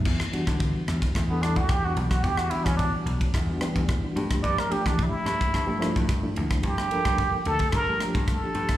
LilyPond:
<<
  \new Staff \with { instrumentName = "Muted trumpet" } { \time 4/4 \key e \minor \tempo 4 = 110 r2 r16 b16 d'16 fis'16 g'16 fis'16 d'16 fis'16 | g'16 fis'16 e'16 cis'16 d'8 r2 r8 | d''16 bes'16 g'16 d'16 e'2 r4 | g'4. a'8 bes'8 r8 a'4 | }
  \new Staff \with { instrumentName = "Reed electric piano" } { \time 4/4 \key e \minor r8 <e g b d' fis'>4. r16 <e g b d' a'>16 <e g b d' a'>8 r16 <e g b d' fis'>8.~ | <e g b d' fis'>16 r16 <e g b d' fis'>4. r16 <e g b d' fis'>16 <e g b d' g'>8 <d' fis'>16 <e g b d' fis'>16 <f a bes d' g'>8~ | <f a bes d' g'>16 r16 <f a bes d' g'>4. r16 <f a bes d' g'>16 <f a bes d' e'>8 g'16 <f a bes d' e'>8.~ | <f a bes d' e'>16 r16 <f bes d' a' bes'>4. r16 <f a bes d' g'>16 <f a bes d' g'>8 <d' e'>16 <f bes d' g' a'>8. | }
  \new Staff \with { instrumentName = "Slap bass" } { \clef bass \time 4/4 \key e \minor e,16 r8 d8 r16 e,16 r16 e,8. e,8. b,,8 | e,8 r16 e,8 r16 b,,16 r16 e,8 r16 e,8 r16 g,8 | g,16 r8 e8 r16 g,16 r16 g,8. g,8. d,8 | g,8 r16 g,8 r16 d,16 r16 g,8 r16 g,8 r16 g,8 | }
  \new DrumStaff \with { instrumentName = "Drums" } \drummode { \time 4/4 <cymc bd>16 ss16 cymr16 <bd cymr ss>16 <bd cymr>8 <cymr ss>16 <bd cymr>16 <bd cymr ss>8 <cymr ss>16 <bd cymr>16 <bd cymr ss>8 cymr16 <bd cymr ss>16 | <bd cymr>16 ss16 cymr16 <bd cymr ss>16 <bd cymr>8 cymr16 <bd cymr>16 <bd cymr ss>8 <cymr ss>16 <bd cymr>16 <bd cymr ss>8 cymr16 <bd cymr ss>16 | <bd cymr>16 ss16 cymr16 <bd cymr ss>16 <bd cymr>8 <cymr ss>16 <bd cymr>16 <bd cymr ss>8 <cymr ss>16 <bd cymr>16 <bd cymr ss>8 cymr16 <bd cymr ss>16 | <bd cymr>16 ss16 cymr16 <bd cymr ss>16 <bd cymr>8 cymr16 <bd cymr>16 <bd cymr ss>8 <cymr ss>16 <bd cymr>16 <bd cymr ss>8 cymr16 <bd cymr ss>16 | }
>>